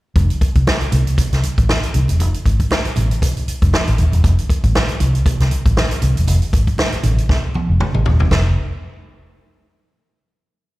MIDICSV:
0, 0, Header, 1, 4, 480
1, 0, Start_track
1, 0, Tempo, 509771
1, 149, Time_signature, 4, 2, 24, 8
1, 10166, End_track
2, 0, Start_track
2, 0, Title_t, "Fingered electric bass"
2, 0, Program_c, 0, 33
2, 151, Note_on_c, 0, 29, 104
2, 263, Note_off_c, 0, 29, 0
2, 526, Note_on_c, 0, 36, 78
2, 614, Note_off_c, 0, 36, 0
2, 875, Note_on_c, 0, 36, 77
2, 1074, Note_off_c, 0, 36, 0
2, 1249, Note_on_c, 0, 36, 70
2, 1336, Note_off_c, 0, 36, 0
2, 1489, Note_on_c, 0, 33, 75
2, 1576, Note_off_c, 0, 33, 0
2, 1835, Note_on_c, 0, 36, 89
2, 1946, Note_off_c, 0, 36, 0
2, 1969, Note_on_c, 0, 28, 78
2, 2075, Note_off_c, 0, 28, 0
2, 2075, Note_on_c, 0, 29, 101
2, 2186, Note_off_c, 0, 29, 0
2, 2313, Note_on_c, 0, 32, 89
2, 2425, Note_off_c, 0, 32, 0
2, 2799, Note_on_c, 0, 33, 77
2, 2908, Note_off_c, 0, 33, 0
2, 3412, Note_on_c, 0, 29, 77
2, 3498, Note_off_c, 0, 29, 0
2, 3650, Note_on_c, 0, 33, 77
2, 3736, Note_off_c, 0, 33, 0
2, 3753, Note_on_c, 0, 27, 88
2, 3864, Note_off_c, 0, 27, 0
2, 3891, Note_on_c, 0, 28, 72
2, 3977, Note_off_c, 0, 28, 0
2, 3994, Note_on_c, 0, 29, 91
2, 4105, Note_off_c, 0, 29, 0
2, 4370, Note_on_c, 0, 33, 70
2, 4456, Note_off_c, 0, 33, 0
2, 4715, Note_on_c, 0, 36, 76
2, 4913, Note_off_c, 0, 36, 0
2, 5087, Note_on_c, 0, 36, 71
2, 5174, Note_off_c, 0, 36, 0
2, 5328, Note_on_c, 0, 33, 84
2, 5414, Note_off_c, 0, 33, 0
2, 5673, Note_on_c, 0, 36, 89
2, 5783, Note_off_c, 0, 36, 0
2, 5806, Note_on_c, 0, 28, 73
2, 5892, Note_off_c, 0, 28, 0
2, 5910, Note_on_c, 0, 29, 92
2, 6021, Note_off_c, 0, 29, 0
2, 6152, Note_on_c, 0, 32, 79
2, 6262, Note_off_c, 0, 32, 0
2, 6629, Note_on_c, 0, 33, 85
2, 6741, Note_off_c, 0, 33, 0
2, 7245, Note_on_c, 0, 29, 83
2, 7331, Note_off_c, 0, 29, 0
2, 7487, Note_on_c, 0, 33, 72
2, 7573, Note_off_c, 0, 33, 0
2, 7589, Note_on_c, 0, 27, 79
2, 7701, Note_off_c, 0, 27, 0
2, 7724, Note_on_c, 0, 28, 79
2, 7811, Note_off_c, 0, 28, 0
2, 7830, Note_on_c, 0, 29, 86
2, 8051, Note_off_c, 0, 29, 0
2, 10166, End_track
3, 0, Start_track
3, 0, Title_t, "Muted fingered electric bass strokes"
3, 770, Note_on_c, 9, 29, 39
3, 864, Note_off_c, 9, 29, 0
3, 2690, Note_on_c, 9, 29, 45
3, 2784, Note_off_c, 9, 29, 0
3, 3276, Note_on_c, 9, 29, 44
3, 3370, Note_off_c, 9, 29, 0
3, 4607, Note_on_c, 9, 29, 40
3, 4702, Note_off_c, 9, 29, 0
3, 6526, Note_on_c, 9, 29, 46
3, 6620, Note_off_c, 9, 29, 0
3, 7110, Note_on_c, 9, 29, 44
3, 7204, Note_off_c, 9, 29, 0
3, 10166, End_track
4, 0, Start_track
4, 0, Title_t, "Drums"
4, 146, Note_on_c, 9, 42, 73
4, 148, Note_on_c, 9, 36, 92
4, 149, Note_on_c, 9, 62, 48
4, 241, Note_off_c, 9, 42, 0
4, 242, Note_off_c, 9, 36, 0
4, 243, Note_off_c, 9, 62, 0
4, 283, Note_on_c, 9, 42, 42
4, 377, Note_off_c, 9, 42, 0
4, 389, Note_on_c, 9, 36, 83
4, 389, Note_on_c, 9, 42, 72
4, 483, Note_off_c, 9, 36, 0
4, 483, Note_off_c, 9, 42, 0
4, 521, Note_on_c, 9, 42, 44
4, 524, Note_on_c, 9, 36, 71
4, 615, Note_off_c, 9, 42, 0
4, 618, Note_off_c, 9, 36, 0
4, 634, Note_on_c, 9, 38, 114
4, 634, Note_on_c, 9, 63, 64
4, 728, Note_off_c, 9, 38, 0
4, 728, Note_off_c, 9, 63, 0
4, 759, Note_on_c, 9, 42, 37
4, 853, Note_off_c, 9, 42, 0
4, 867, Note_on_c, 9, 42, 68
4, 867, Note_on_c, 9, 62, 53
4, 867, Note_on_c, 9, 64, 72
4, 961, Note_off_c, 9, 42, 0
4, 961, Note_off_c, 9, 62, 0
4, 961, Note_off_c, 9, 64, 0
4, 1008, Note_on_c, 9, 42, 46
4, 1102, Note_off_c, 9, 42, 0
4, 1109, Note_on_c, 9, 64, 65
4, 1110, Note_on_c, 9, 36, 93
4, 1113, Note_on_c, 9, 42, 102
4, 1203, Note_off_c, 9, 64, 0
4, 1204, Note_off_c, 9, 36, 0
4, 1207, Note_off_c, 9, 42, 0
4, 1248, Note_on_c, 9, 42, 47
4, 1251, Note_on_c, 9, 38, 32
4, 1343, Note_off_c, 9, 42, 0
4, 1345, Note_off_c, 9, 38, 0
4, 1350, Note_on_c, 9, 42, 65
4, 1351, Note_on_c, 9, 62, 39
4, 1445, Note_off_c, 9, 42, 0
4, 1445, Note_off_c, 9, 62, 0
4, 1487, Note_on_c, 9, 36, 88
4, 1488, Note_on_c, 9, 42, 49
4, 1581, Note_off_c, 9, 36, 0
4, 1583, Note_off_c, 9, 42, 0
4, 1593, Note_on_c, 9, 38, 102
4, 1595, Note_on_c, 9, 63, 64
4, 1688, Note_off_c, 9, 38, 0
4, 1689, Note_off_c, 9, 63, 0
4, 1726, Note_on_c, 9, 42, 49
4, 1820, Note_off_c, 9, 42, 0
4, 1826, Note_on_c, 9, 42, 59
4, 1827, Note_on_c, 9, 63, 61
4, 1920, Note_off_c, 9, 42, 0
4, 1922, Note_off_c, 9, 63, 0
4, 1958, Note_on_c, 9, 63, 60
4, 1967, Note_on_c, 9, 42, 54
4, 2052, Note_off_c, 9, 63, 0
4, 2061, Note_off_c, 9, 42, 0
4, 2070, Note_on_c, 9, 62, 50
4, 2071, Note_on_c, 9, 42, 80
4, 2164, Note_off_c, 9, 62, 0
4, 2165, Note_off_c, 9, 42, 0
4, 2206, Note_on_c, 9, 42, 42
4, 2300, Note_off_c, 9, 42, 0
4, 2312, Note_on_c, 9, 36, 78
4, 2315, Note_on_c, 9, 42, 73
4, 2406, Note_off_c, 9, 36, 0
4, 2409, Note_off_c, 9, 42, 0
4, 2444, Note_on_c, 9, 42, 46
4, 2446, Note_on_c, 9, 36, 70
4, 2538, Note_off_c, 9, 42, 0
4, 2540, Note_off_c, 9, 36, 0
4, 2549, Note_on_c, 9, 63, 64
4, 2556, Note_on_c, 9, 38, 109
4, 2643, Note_off_c, 9, 63, 0
4, 2651, Note_off_c, 9, 38, 0
4, 2683, Note_on_c, 9, 42, 43
4, 2777, Note_off_c, 9, 42, 0
4, 2786, Note_on_c, 9, 62, 48
4, 2786, Note_on_c, 9, 64, 62
4, 2790, Note_on_c, 9, 42, 77
4, 2880, Note_off_c, 9, 62, 0
4, 2880, Note_off_c, 9, 64, 0
4, 2884, Note_off_c, 9, 42, 0
4, 2928, Note_on_c, 9, 42, 43
4, 3023, Note_off_c, 9, 42, 0
4, 3030, Note_on_c, 9, 64, 68
4, 3033, Note_on_c, 9, 36, 94
4, 3036, Note_on_c, 9, 42, 111
4, 3124, Note_off_c, 9, 64, 0
4, 3127, Note_off_c, 9, 36, 0
4, 3130, Note_off_c, 9, 42, 0
4, 3171, Note_on_c, 9, 42, 45
4, 3265, Note_off_c, 9, 42, 0
4, 3276, Note_on_c, 9, 42, 57
4, 3370, Note_off_c, 9, 42, 0
4, 3410, Note_on_c, 9, 36, 92
4, 3411, Note_on_c, 9, 42, 47
4, 3504, Note_off_c, 9, 36, 0
4, 3505, Note_off_c, 9, 42, 0
4, 3511, Note_on_c, 9, 63, 76
4, 3518, Note_on_c, 9, 38, 100
4, 3605, Note_off_c, 9, 63, 0
4, 3612, Note_off_c, 9, 38, 0
4, 3648, Note_on_c, 9, 42, 53
4, 3742, Note_off_c, 9, 42, 0
4, 3748, Note_on_c, 9, 42, 51
4, 3750, Note_on_c, 9, 63, 66
4, 3842, Note_off_c, 9, 42, 0
4, 3844, Note_off_c, 9, 63, 0
4, 3882, Note_on_c, 9, 63, 61
4, 3889, Note_on_c, 9, 42, 46
4, 3977, Note_off_c, 9, 63, 0
4, 3983, Note_off_c, 9, 42, 0
4, 3993, Note_on_c, 9, 36, 86
4, 3993, Note_on_c, 9, 42, 74
4, 3994, Note_on_c, 9, 62, 54
4, 4087, Note_off_c, 9, 36, 0
4, 4087, Note_off_c, 9, 42, 0
4, 4088, Note_off_c, 9, 62, 0
4, 4129, Note_on_c, 9, 42, 43
4, 4223, Note_off_c, 9, 42, 0
4, 4233, Note_on_c, 9, 36, 85
4, 4237, Note_on_c, 9, 42, 75
4, 4327, Note_off_c, 9, 36, 0
4, 4331, Note_off_c, 9, 42, 0
4, 4366, Note_on_c, 9, 42, 48
4, 4367, Note_on_c, 9, 36, 69
4, 4460, Note_off_c, 9, 42, 0
4, 4461, Note_off_c, 9, 36, 0
4, 4476, Note_on_c, 9, 38, 104
4, 4477, Note_on_c, 9, 63, 65
4, 4570, Note_off_c, 9, 38, 0
4, 4571, Note_off_c, 9, 63, 0
4, 4600, Note_on_c, 9, 42, 40
4, 4695, Note_off_c, 9, 42, 0
4, 4708, Note_on_c, 9, 42, 77
4, 4711, Note_on_c, 9, 62, 48
4, 4711, Note_on_c, 9, 64, 67
4, 4802, Note_off_c, 9, 42, 0
4, 4805, Note_off_c, 9, 62, 0
4, 4805, Note_off_c, 9, 64, 0
4, 4847, Note_on_c, 9, 42, 42
4, 4941, Note_off_c, 9, 42, 0
4, 4951, Note_on_c, 9, 36, 92
4, 4953, Note_on_c, 9, 42, 99
4, 4954, Note_on_c, 9, 64, 71
4, 5045, Note_off_c, 9, 36, 0
4, 5047, Note_off_c, 9, 42, 0
4, 5048, Note_off_c, 9, 64, 0
4, 5087, Note_on_c, 9, 42, 45
4, 5090, Note_on_c, 9, 38, 29
4, 5181, Note_off_c, 9, 42, 0
4, 5184, Note_off_c, 9, 38, 0
4, 5188, Note_on_c, 9, 42, 65
4, 5190, Note_on_c, 9, 62, 39
4, 5282, Note_off_c, 9, 42, 0
4, 5284, Note_off_c, 9, 62, 0
4, 5326, Note_on_c, 9, 36, 93
4, 5328, Note_on_c, 9, 42, 51
4, 5420, Note_off_c, 9, 36, 0
4, 5422, Note_off_c, 9, 42, 0
4, 5434, Note_on_c, 9, 38, 103
4, 5434, Note_on_c, 9, 63, 69
4, 5528, Note_off_c, 9, 38, 0
4, 5528, Note_off_c, 9, 63, 0
4, 5565, Note_on_c, 9, 42, 49
4, 5659, Note_off_c, 9, 42, 0
4, 5665, Note_on_c, 9, 63, 62
4, 5666, Note_on_c, 9, 42, 55
4, 5759, Note_off_c, 9, 63, 0
4, 5760, Note_off_c, 9, 42, 0
4, 5798, Note_on_c, 9, 63, 52
4, 5809, Note_on_c, 9, 42, 44
4, 5892, Note_off_c, 9, 63, 0
4, 5903, Note_off_c, 9, 42, 0
4, 5909, Note_on_c, 9, 62, 59
4, 5911, Note_on_c, 9, 42, 85
4, 6003, Note_off_c, 9, 62, 0
4, 6005, Note_off_c, 9, 42, 0
4, 6043, Note_on_c, 9, 42, 39
4, 6137, Note_off_c, 9, 42, 0
4, 6149, Note_on_c, 9, 36, 94
4, 6151, Note_on_c, 9, 42, 78
4, 6243, Note_off_c, 9, 36, 0
4, 6245, Note_off_c, 9, 42, 0
4, 6284, Note_on_c, 9, 36, 68
4, 6284, Note_on_c, 9, 42, 45
4, 6378, Note_off_c, 9, 36, 0
4, 6379, Note_off_c, 9, 42, 0
4, 6385, Note_on_c, 9, 63, 64
4, 6393, Note_on_c, 9, 38, 104
4, 6479, Note_off_c, 9, 63, 0
4, 6487, Note_off_c, 9, 38, 0
4, 6519, Note_on_c, 9, 42, 39
4, 6613, Note_off_c, 9, 42, 0
4, 6624, Note_on_c, 9, 42, 76
4, 6624, Note_on_c, 9, 62, 53
4, 6624, Note_on_c, 9, 64, 67
4, 6718, Note_off_c, 9, 42, 0
4, 6718, Note_off_c, 9, 62, 0
4, 6718, Note_off_c, 9, 64, 0
4, 6764, Note_on_c, 9, 42, 42
4, 6858, Note_off_c, 9, 42, 0
4, 6866, Note_on_c, 9, 64, 77
4, 6868, Note_on_c, 9, 36, 99
4, 6871, Note_on_c, 9, 38, 51
4, 6960, Note_off_c, 9, 64, 0
4, 6962, Note_off_c, 9, 36, 0
4, 6965, Note_off_c, 9, 38, 0
4, 7104, Note_on_c, 9, 62, 37
4, 7110, Note_on_c, 9, 48, 57
4, 7198, Note_off_c, 9, 62, 0
4, 7204, Note_off_c, 9, 48, 0
4, 7347, Note_on_c, 9, 63, 74
4, 7349, Note_on_c, 9, 47, 77
4, 7441, Note_off_c, 9, 63, 0
4, 7443, Note_off_c, 9, 47, 0
4, 7480, Note_on_c, 9, 45, 64
4, 7575, Note_off_c, 9, 45, 0
4, 7583, Note_on_c, 9, 63, 62
4, 7586, Note_on_c, 9, 43, 78
4, 7677, Note_off_c, 9, 63, 0
4, 7680, Note_off_c, 9, 43, 0
4, 7716, Note_on_c, 9, 63, 59
4, 7721, Note_on_c, 9, 43, 75
4, 7810, Note_off_c, 9, 63, 0
4, 7815, Note_off_c, 9, 43, 0
4, 7826, Note_on_c, 9, 62, 73
4, 7827, Note_on_c, 9, 36, 81
4, 7827, Note_on_c, 9, 38, 89
4, 7921, Note_off_c, 9, 36, 0
4, 7921, Note_off_c, 9, 38, 0
4, 7921, Note_off_c, 9, 62, 0
4, 10166, End_track
0, 0, End_of_file